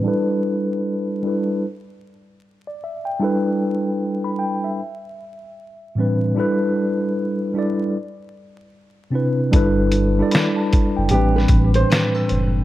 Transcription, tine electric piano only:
0.03 G3 D4 E4 A4
0.08 B4
1.22 G3 D4 E4 A4
1.27 B4
2.67 D5
2.84 E5
3.05 G5
3.19 G3 D4 E4 A4
3.24 B4
4.24 B5
4.39 G5
4.64 E5
5.95 A2 E3 G3 C4 D4
6.00 B4
6.35 G3 D4 E4 A4
6.40 B4
7.54 G3 D4 E4 A4
7.59 D5
9.10 C3 C4 D4 E4
9.15 B4
9.51 G3 D4 E4 A4
9.56 B4
10.18 G3 D4 E4 A4
10.22 D5
10.32 B5
10.56 A5
10.97 G5
11.10 A2 E3 G3 C4 D4
11.14 B4

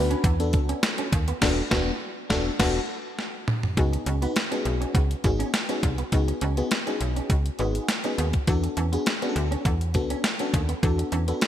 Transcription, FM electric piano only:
Already playing: B3 D4 F#4 B4
0.40 B3 D4 F#4 A4
1.41 B3 D4 F#4 A4
1.71 B3 D4 F#4
2.29 B3 D4 F#4 A4
2.59 B3 D4 F#4 A4
3.77 B3 D#4 F#4 G#4
4.22 B3 D#4 F#4 B4
4.51 B3 D#4 F#4 G#4
5.24 B3 D#4 F#4 G#4
5.69 B3 D#4 F#4 G#4
6.12 B3 D#4 F#4 G#4
6.57 B3 D#4 F#4 G#4
6.86 B3 D#4 F#4 G#4
7.59 B3 D#4 F#4 G#4
8.04 B3 D#4 F#4 G#4
8.48 B3 D4 F#4 A4
8.92 B3 D4 F#4 G#4
9.22 B3 D4 F#4 G#4
9.29 A4
9.95 B3 D4 F#4 A4
10.40 B3 D4 F#4 A4
10.83 B3 D4 F#4 A4
11.28 B3 D4 F#4 A4

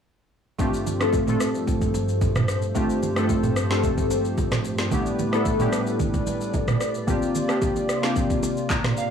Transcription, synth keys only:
0.58 A3 C4 D4 F4 G4
1.00 A3 C4 D4 F4 A4
1.27 A3 C4 D4 F4 A4
2.75 A3 C4 D4 F4 G4
3.16 A3 C4 D4 F4 A4
3.70 A3 C4 D4 F4 A4
4.91 A3 B3 D4 E4 G4
5.32 A3 B3 D4 E4 A4
5.59 A3 B3 C#4 E4 G4
5.67 D4
7.07 A#3 C4 D4 F4 G4
7.48 A#3 C4 D4 F4 G4
8.02 A#3 C4 D4 F4 G4
8.71 A#5
8.98 F5

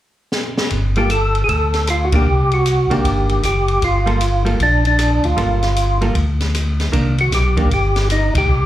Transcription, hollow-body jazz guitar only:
0.97 G3 A#3 F4 A4
2.13 D#3 A#3 D4
2.90 D#3 A#3 D4
4.06 G3 A#3 F4 A4
4.45 G3 A#3 F4 A4
5.37 G3 A#3 F4 A4
6.01 G3 A#3 F4 A4
6.92 D#3 A#3 D4
7.57 D#3 A#3 D4

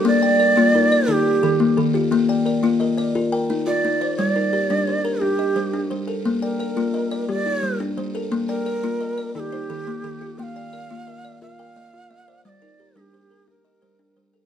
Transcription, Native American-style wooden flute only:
0.08 D5
1.11 G4
3.66 D5
4.17 C#5
4.28 D5
5.20 G4
6.42 A#4
7.30 D5
8.48 A#4
9.35 A4
9.40 G4
10.39 G5
10.43 F5
11.42 F5
12.46 D5 D#5
12.98 G4
13.49 A#4

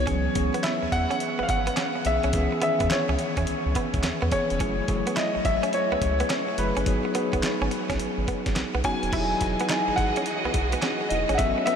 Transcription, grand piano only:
Already playing: C#5
0.63 E5
0.92 F#5
1.43 F5
1.50 F#5
2.06 E5
2.63 E5
2.92 C#5
4.32 C#5
5.17 D#5
5.45 E5
5.74 C#5
6.58 B4
8.85 G#5
9.96 F#5
11.09 D#5
11.35 E5 F#5
11.66 E5

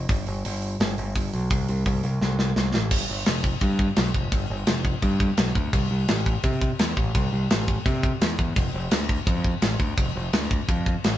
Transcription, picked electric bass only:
0.09 G1
0.27 G1
0.45 G1
0.80 G1
0.98 G1
1.16 G1
1.33 B1
1.51 C2
1.69 C2
1.86 C2
2.04 C2
2.21 C2
2.57 C2
2.75 A1
2.91 G1
3.09 G1
3.27 F1
3.61 G2
3.98 B1
4.14 F1
4.32 G1
4.50 G1
4.68 F1
5.03 G2
5.38 B1
5.56 D2
5.73 C2
5.91 C2
6.08 A1
6.44 C3
6.80 E2
6.97 A1
7.15 C2
7.33 C2
7.51 A1
7.86 C3
8.21 E2
8.39 E2
8.56 F1
8.74 F1
8.92 D2
9.27 F2
9.62 A1
9.79 D2
9.98 F1
10.16 F1
10.33 D2
10.68 F2
11.05 A1

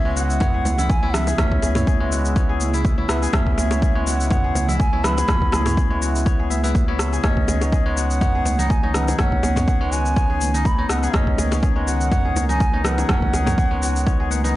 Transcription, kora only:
Already playing: C#4 D#4 G#4
0.05 G#3
0.16 F#4
0.54 G#4
0.78 E4
1.03 E4
1.27 G#4
1.38 C#4
1.63 G#4
1.87 G#4
2.00 G#3
2.12 F#4
2.49 G#4
2.74 E4
2.98 E4
3.22 G#4
3.33 C#4
3.58 G#4
3.82 G#4
3.95 G#3
4.07 F#4
4.44 G#4
4.68 E4
4.93 E4
5.17 G#4
5.28 C#4
5.53 G#4
5.77 G#4
5.91 G#3
6.02 F#4
6.39 G#4
6.64 E4
6.88 E4
7.12 G#4
7.24 C#4
7.48 G#4
7.72 G#4
7.86 G#3
7.97 F#4
8.35 G#4
8.59 D#4
8.83 D#4
9.08 G#4
9.19 C#4
9.43 G#4
9.68 G#4
9.81 G#3
9.92 F#4
10.30 G#4
10.54 D#4
10.79 D#4
11.03 G#4
11.14 C#4
11.38 G#4
11.63 G#4
11.76 G#3
11.87 F#4
12.25 G#4
12.49 D#4
12.74 D#4
12.98 G#4
13.09 C#4
13.33 G#4
13.58 G#4
13.71 G#3
13.82 F#4
14.20 G#4
14.44 D#4

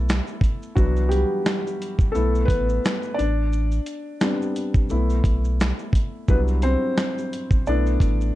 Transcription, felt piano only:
Already playing: A3 B3 E4 A4
0.75 E3 F#3 B3 D4 E4 F#4
1.09 G3 G4
2.12 A3 B3 E4 A4
2.45 B4
2.50 B3
3.15 D4 D5
4.21 G3 B3 C4 D4
4.90 A3 B3 E4
6.29 F#3 G3 B3 D4 E4 B4
6.63 C4 C5
7.67 A3 B3 D4 E4 D5

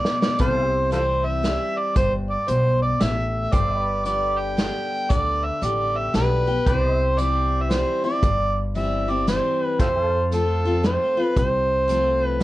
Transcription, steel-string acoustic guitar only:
Already playing: B2
0.39 C3
0.91 E3 G3 C4 E4
1.43 E3 G3 C4 E4
1.96 G2
2.48 B2
3.01 A2
3.53 G2
4.05 D3 G3 B3 G4
4.57 D3 G3 B3 G4
5.10 D3
5.61 D3 G3 B3 G4
6.14 D3 G3 B3 G4
6.47 B3 G4
6.67 C3
7.18 E3 G3 C4 E4
7.70 E3 G3 C4 E4
8.04 C4 E4
8.24 G2
8.75 E3 G3 C4 E4
9.08 C4 E4
9.27 E3 G3 C4 E4
9.80 F2
10.31 F3 A3 C4 F4
10.65 C4 F4
10.83 F3 A3 C4 F4
11.17 C4 F4
11.36 C3
11.88 F3 A3 C4 F4
12.40 F3

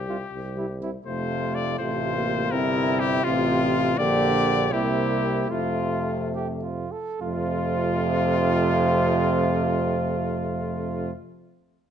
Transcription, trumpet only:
Already playing: G4
1.06 C5
1.55 D5
1.79 C5
2.51 A#4
3.00 G4
3.24 F4
3.98 D5
4.72 G4
5.50 F4
7.21 F4

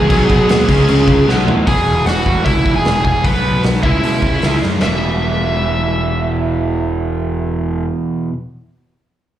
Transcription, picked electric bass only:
0.10 B1
0.30 B1
0.50 D#2
0.69 C#2
0.89 C#2
1.08 C#2
1.28 B1
1.48 A2
1.67 E1
1.86 E1
2.07 E1
2.27 E1
2.46 C#2
2.66 E1
2.85 E1
3.05 E1
3.25 B1
3.44 B1
3.64 B1
3.83 C#2
4.03 B2
4.22 C#2
4.43 C#2
4.62 F#2
4.82 E1

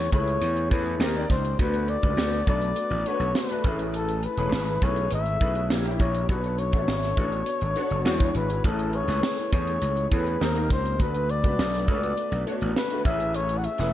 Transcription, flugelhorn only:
Already playing: C#5
0.13 C#5
0.72 B4
1.02 A#4
1.31 C5
1.60 B4
1.89 D5
2.49 D5
3.07 C#5
3.36 B4
3.95 A4
4.25 B4
4.84 C#5
5.14 E5
6.00 C#5
6.30 B4
6.59 C#5
8.36 B4
8.65 A4
8.95 C#5
9.53 C#5
10.14 B4
10.42 A#4
10.72 C5
11.02 B4
11.31 D5
11.90 D5
12.77 B4
13.05 E5
13.35 C#5
13.58 F#5
13.65 E5

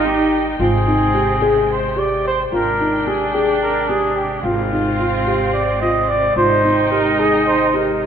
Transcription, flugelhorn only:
0.06 G4
0.61 G#4
1.71 C5
1.99 D5
2.27 C5
2.54 A#4
3.07 G#4
3.34 G4
3.62 A#4
3.88 G#4
4.16 G4
4.42 F4
5.53 D5
5.81 D#5
6.08 D5
6.37 C5
6.91 A#4
7.20 G#4
7.46 C5
7.76 A#4

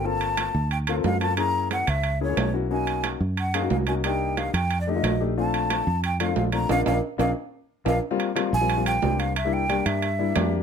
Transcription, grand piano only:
0.04 A#3 C4 F4 A4
0.88 A#3 C4 F4 A4
0.96 A#3 C4 F4 A4
1.20 A#3 C4 F4 A4
1.37 A#3 C#4 E4 G#4
2.21 A#3 C#4 E4 G#4
2.29 A#3 C#4 E4 G#4
2.53 A#3 C#4 E4 F#4
2.70 A#3 C#4 D#4 F#4
3.54 A#3 C#4 D#4 G#4
3.62 A#3 C#4 D#4 F#4
3.88 A#3 C#4 D#4 F#4
4.04 A#3 D4 D#4 G4
4.87 A3 D4 D#4 G4
4.95 A3 D4 D#4 F4
5.20 A3 D4 D#4 G4
5.37 A3 C4 D4 F4
6.20 A3 C4 D4 F4
6.28 A3 C4 D4 F4
6.53 A3 C4 D4 F4
6.69 A#3 D4 F4
6.86 A#3 D4 F4
7.18 A#3 D4 F4
7.85 A#3 D4 F4
8.11 G3 A#3 C4 F4
8.35 G3 A#3 C4 F4
8.61 G3 A#3 C4 F4
8.77 G3 A#3 C4 F4
9.02 G3 A#3 C4 D4
9.45 G3 A#3 D4 E4
9.69 G3 A#3 D4 G4
10.19 G3 A#3 D4 E4
10.35 G3 A#3 D4 G4

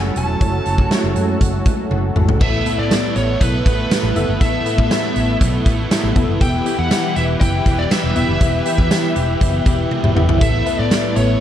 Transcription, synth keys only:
Already playing: A3 E4 F#4 C#5
0.41 A3 E4 F#4 C#5
0.90 G#3 E4 F#4 C#5
0.96 A3
1.91 C#5 F#5
2.16 E4 A4
2.41 A2 B3 E4 A4 E5
2.66 B3 E4 A4 E5
4.15 B3 E4 A4 E5
4.40 A2 B3 E4 A4 E5
4.66 B3 E4 A4 E5
6.16 B3 E4 A4 E5
6.41 E3 B3 E4 G4 E5
6.66 B3 E4 G4 E5
8.16 B3 E4 G4 E5
8.41 E3 B3 E4 G4 E5
8.66 B3 E4 G4 G5
10.16 B3 E4 G4 E5
10.41 A2 B3 E4 A4 E5
10.66 B3 E4 A4 B4

